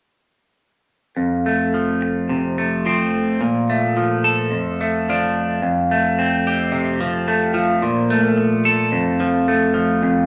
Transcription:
1.17 3.39 F2 medium
1.46 2.58 A3 soft
1.74 2.85 F3 soft
2.02 muted clean electric guitar stroke soft
2.29 2.85 C3 medium
2.58 3.44 A3 medium
2.86 3.96 F3 soft
2.86 3.41 C4 medium
3.41 4.51 A#2 medium
3.70 4.79 A3 soft
3.97 5.07 F3 medium
4.24 5.59 A4 medium
4.51 5.61 F2 medium
4.81 5.60 A3 medium
5.09 5.60 F3 medium
5.09 5.60 D4 soft
5.62 7.82 F2 medium
5.91 7.27 A3 medium
6.19 7.83 C4 medium
6.47 7.80 G4 medium
6.72 7.00 C3 medium
7.01 7.54 F3 medium
7.28 7.85 A3 medium
7.54 9.20 F3 medium
7.82 8.92 A#2 medium
8.10 9.48 A3 medium
8.38 muted clean electric guitar stroke medium
8.65 10.26 A4 medium
8.92 10.01 F2 medium
9.20 9.74 F3 medium
9.48 10.26 A3 medium
9.74 10.26 F3 medium
10.02 10.26 F2 medium

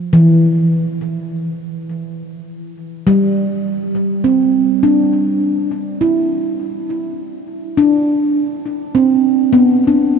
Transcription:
0.13 1.92 E3 medium
3.07 4.86 G3 medium
4.24 6.04 C4 soft
4.83 6.62 D4 soft
6.01 7.80 E4 soft
7.77 9.57 D4 medium
8.95 10.19 C4 medium
9.53 10.19 B3 medium
9.87 10.19 D4 soft

